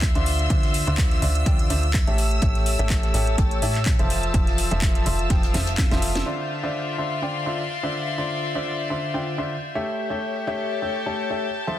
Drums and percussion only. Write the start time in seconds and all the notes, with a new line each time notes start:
0.01 kick, snare, clap, closed hi-hat
0.15 closed hi-hat
0.26 snare, closed hi-hat, open hi-hat
0.39 closed hi-hat
0.50 kick, closed hi-hat
0.63 snare, closed hi-hat
0.74 snare, closed hi-hat, open hi-hat
0.87 closed hi-hat
0.97 kick, snare, clap, closed hi-hat
1.11 snare, closed hi-hat
1.22 closed hi-hat, open hi-hat
1.35 closed hi-hat
1.46 kick, closed hi-hat
1.59 closed hi-hat
1.70 closed hi-hat, open hi-hat
1.83 closed hi-hat
1.94 kick, snare, clap, closed hi-hat
2.07 closed hi-hat
2.18 closed hi-hat, open hi-hat
2.31 closed hi-hat
2.42 kick, closed hi-hat
2.55 snare, closed hi-hat
2.66 snare, closed hi-hat, open hi-hat
2.79 closed hi-hat
2.90 kick, snare, clap, closed hi-hat
3.03 snare, closed hi-hat
3.14 closed hi-hat, open hi-hat
3.27 closed hi-hat
3.38 kick, closed hi-hat
3.51 closed hi-hat
3.62 closed hi-hat, open hi-hat
3.75 snare, clap, closed hi-hat
3.86 kick, snare, clap, closed hi-hat
3.99 closed hi-hat
4.10 snare, closed hi-hat, open hi-hat
4.23 closed hi-hat
4.34 kick, closed hi-hat
4.47 snare, closed hi-hat
4.58 snare, closed hi-hat, open hi-hat
4.71 closed hi-hat
4.82 kick, snare, clap, closed hi-hat
4.95 snare, closed hi-hat
5.06 closed hi-hat, open hi-hat
5.19 closed hi-hat
5.30 kick, snare, closed hi-hat
5.43 snare, closed hi-hat
5.54 snare, closed hi-hat, open hi-hat
5.67 snare, closed hi-hat
5.78 kick, snare, clap, closed hi-hat
5.91 snare, closed hi-hat
6.02 closed hi-hat, open hi-hat
6.15 snare, closed hi-hat